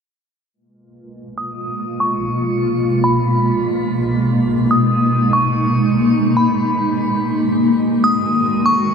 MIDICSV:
0, 0, Header, 1, 3, 480
1, 0, Start_track
1, 0, Tempo, 416667
1, 620, Time_signature, 4, 2, 24, 8
1, 10305, End_track
2, 0, Start_track
2, 0, Title_t, "Synth bell"
2, 0, Program_c, 0, 98
2, 1585, Note_on_c, 0, 87, 89
2, 2259, Note_off_c, 0, 87, 0
2, 2307, Note_on_c, 0, 85, 85
2, 2531, Note_off_c, 0, 85, 0
2, 3500, Note_on_c, 0, 83, 86
2, 3951, Note_off_c, 0, 83, 0
2, 5424, Note_on_c, 0, 87, 80
2, 6098, Note_off_c, 0, 87, 0
2, 6142, Note_on_c, 0, 85, 82
2, 6369, Note_off_c, 0, 85, 0
2, 7335, Note_on_c, 0, 83, 81
2, 8251, Note_off_c, 0, 83, 0
2, 9260, Note_on_c, 0, 87, 96
2, 9936, Note_off_c, 0, 87, 0
2, 9972, Note_on_c, 0, 85, 82
2, 10203, Note_off_c, 0, 85, 0
2, 10305, End_track
3, 0, Start_track
3, 0, Title_t, "Ambient pad"
3, 0, Program_c, 1, 92
3, 618, Note_on_c, 1, 47, 80
3, 618, Note_on_c, 1, 56, 73
3, 618, Note_on_c, 1, 65, 87
3, 619, Note_on_c, 1, 58, 73
3, 4420, Note_off_c, 1, 65, 0
3, 4459, Note_on_c, 1, 63, 88
3, 8252, Note_off_c, 1, 47, 0
3, 8261, Note_off_c, 1, 63, 0
3, 8296, Note_on_c, 1, 66, 86
3, 8297, Note_on_c, 1, 51, 77
3, 10305, Note_off_c, 1, 51, 0
3, 10305, Note_off_c, 1, 56, 0
3, 10305, Note_off_c, 1, 58, 0
3, 10305, Note_off_c, 1, 66, 0
3, 10305, End_track
0, 0, End_of_file